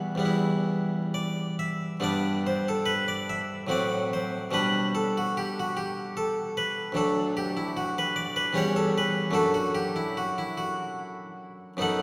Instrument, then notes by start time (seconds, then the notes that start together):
harpsichord
Already playing: E2 G3 B3 E4 F#4
0.15 E2 G3 B3
0.25 E4
1.14 D5
1.59 E5
2.00 G2 G3 B3 D4 D5
2.47 C5
2.68 A4
2.86 B4
3.08 D5
3.30 E5
3.67 A2 F#3 C4 F#4
3.71 D5
4.13 C5
4.51 B2 G3 D4 B4
4.95 A4
5.17 F#4
5.37 G4
5.60 F#4
5.77 G4
6.17 A4
6.57 B4
6.92 D2 F#3 D4
6.97 A4
7.37 G4
7.57 E4
7.77 F#4
7.98 B4
8.16 D5
8.36 B4
8.53 E2 G3 C#4 G4
8.57 C#5
8.76 A4
8.98 B4
9.31 F#2 A3 D4 F#4 A4
9.54 F#4
9.75 G4
9.96 E4
10.17 F#4
10.38 E4
10.57 F#4
11.77 F#2 B3 D#4 A4
11.82 F#5